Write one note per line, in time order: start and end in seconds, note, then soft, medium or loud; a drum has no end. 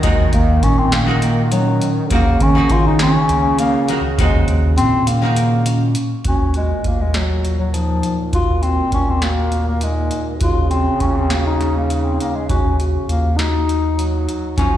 0.00 0.27 D#2 loud
0.00 2.11 D#3 loud
0.00 0.69 D#3 medium
0.00 0.35 G#3 medium
0.00 0.70 D#4 medium
0.00 kick loud
0.00 closed hi-hat medium
0.04 0.21 A#3 medium
0.04 0.70 F#4 medium
0.04 0.70 A#4 medium
0.33 0.65 D#2 medium
0.33 0.68 A#3 medium
0.33 0.65 A#3 medium
0.33 kick medium
0.33 closed hi-hat medium
0.63 1.81 A#2 medium
0.63 0.80 C#4 medium
0.63 kick medium
0.63 closed hi-hat medium
0.79 0.95 C4 medium
0.92 1.51 A#3 medium
0.92 1.10 C#4 medium
0.92 snare loud
0.92 closed hi-hat medium
1.07 1.73 D#3 medium
1.07 1.73 D#4 medium
1.07 1.73 F#4 medium
1.07 1.74 A#4 medium
1.22 1.39 A#3 medium
1.22 closed hi-hat medium
1.52 1.93 F#3 medium
1.52 1.87 C#4 medium
1.52 closed hi-hat medium
1.82 closed hi-hat medium
2.10 2.34 D#2 loud
2.10 5.95 C#3 loud
2.10 2.39 D#3 medium
2.10 2.28 A#3 medium
2.10 2.44 A#3 loud
2.10 2.40 D#4 medium
2.10 2.40 F#4 medium
2.10 2.40 A#4 medium
2.10 kick loud
2.10 closed hi-hat medium
2.40 2.64 D#3 medium
2.40 2.75 A#3 medium
2.40 2.74 C#4 loud
2.40 kick medium
2.40 closed hi-hat medium
2.55 3.31 D#3 medium
2.55 3.31 D#4 medium
2.55 3.31 F#4 medium
2.55 3.32 A#4 medium
2.70 3.17 D#3 medium
2.70 2.86 F4 loud
2.70 kick medium
2.70 closed hi-hat medium
2.87 3.00 D#4 medium
2.99 3.17 C#4 medium
2.99 3.56 C#4 loud
2.99 snare loud
2.99 closed hi-hat medium
3.29 4.00 C#2 loud
3.29 3.47 A#3 medium
3.29 closed hi-hat medium
3.59 4.01 A#3 medium
3.59 3.93 C#4 medium
3.59 closed hi-hat medium
3.88 4.08 D#3 medium
3.88 4.08 D#4 medium
3.88 4.08 F#4 medium
3.88 4.08 A#4 medium
3.88 closed hi-hat medium
4.18 4.42 D#2 loud
4.18 4.85 D#3 medium
4.18 4.47 G#3 medium
4.18 4.36 A#3 medium
4.18 4.85 D#4 medium
4.18 4.85 F#4 medium
4.18 4.85 C5 medium
4.18 kick medium
4.18 closed hi-hat medium
4.48 4.80 D#2 medium
4.48 4.82 A#3 medium
4.48 closed hi-hat medium
4.77 5.96 A#2 medium
4.77 5.09 C4 loud
4.77 closed hi-hat medium
5.07 5.96 A#3 medium
5.07 5.24 C#4 medium
5.07 closed hi-hat medium
5.22 5.88 D#3 medium
5.22 5.88 D#4 medium
5.22 5.89 F#4 medium
5.22 5.89 A#4 medium
5.36 5.54 A#3 medium
5.36 closed hi-hat medium
5.66 6.01 C#4 medium
5.66 closed hi-hat medium
5.95 closed hi-hat medium
6.25 6.72 D#2 medium
6.25 10.42 A#2 medium
6.25 6.55 C#4 medium
6.25 6.43 F#4 medium
6.25 kick medium
6.25 closed hi-hat medium
6.54 6.89 G#3 medium
6.54 6.73 F#4 medium
6.54 closed hi-hat medium
6.84 8.03 D#2 medium
6.84 7.02 A#3 medium
6.84 7.03 F4 medium
6.84 kick medium
6.84 closed hi-hat soft
7.01 7.18 G#3 medium
7.14 7.59 F#3 medium
7.14 7.49 F#4 medium
7.14 snare medium
7.14 closed hi-hat medium
7.45 closed hi-hat soft
7.59 7.76 F#3 medium
7.74 8.19 F3 medium
7.74 8.09 D#4 medium
7.74 closed hi-hat medium
8.03 closed hi-hat medium
8.33 8.81 D#2 medium
8.33 8.64 F4 medium
8.33 8.51 F#4 medium
8.33 kick medium
8.33 closed hi-hat medium
8.63 8.93 C4 medium
8.63 8.80 F#4 medium
8.63 closed hi-hat medium
8.92 10.11 D#2 medium
8.92 9.11 C#4 medium
8.92 9.10 F4 medium
8.92 kick medium
8.92 closed hi-hat medium
9.10 9.25 C4 medium
9.22 9.68 A#3 medium
9.22 9.57 F#4 medium
9.22 snare medium
9.22 closed hi-hat medium
9.52 closed hi-hat medium
9.69 9.85 A#3 medium
9.81 10.27 G#3 medium
9.81 10.17 D#4 medium
9.81 closed hi-hat medium
10.11 closed hi-hat medium
10.41 10.89 D#2 loud
10.41 13.71 C#3 loud
10.41 10.70 F4 medium
10.41 10.59 F#4 medium
10.41 kick loud
10.41 closed hi-hat medium
10.70 11.02 C4 medium
10.70 10.89 F#4 medium
10.70 closed hi-hat medium
11.00 12.19 D#2 medium
11.00 11.17 C#4 medium
11.00 11.19 F4 medium
11.00 kick medium
11.00 closed hi-hat medium
11.16 11.33 C4 medium
11.30 11.46 A#3 medium
11.30 11.65 F#4 medium
11.30 snare medium
11.30 closed hi-hat medium
11.46 11.74 D#4 medium
11.61 snare soft
11.61 closed hi-hat medium
11.76 12.07 A#3 medium
11.90 12.25 D#4 medium
11.90 closed hi-hat medium
12.05 12.20 C4 medium
12.20 12.37 A#3 medium
12.20 closed hi-hat medium
12.35 12.49 G#3 medium
12.49 12.97 D#2 medium
12.49 12.77 C#4 medium
12.49 12.67 F#4 medium
12.49 kick loud
12.49 closed hi-hat medium
12.79 12.96 F#4 medium
12.79 closed hi-hat medium
13.09 14.27 D#2 medium
13.09 13.39 A#3 medium
13.09 13.27 F4 medium
13.09 closed hi-hat medium
13.37 14.27 D#4 medium
13.37 13.73 F#4 medium
13.37 snare medium
13.37 closed hi-hat medium
13.69 closed hi-hat medium
13.97 14.60 F#3 medium
13.97 14.33 D#4 medium
13.97 closed hi-hat medium
14.29 closed hi-hat medium
14.58 14.77 D#2 medium
14.58 14.77 D#3 medium
14.58 14.77 F3 medium
14.58 14.77 C#4 medium
14.58 14.77 D#4 medium
14.58 14.77 F4 soft
14.58 14.75 F#4 medium
14.58 kick medium
14.58 closed hi-hat medium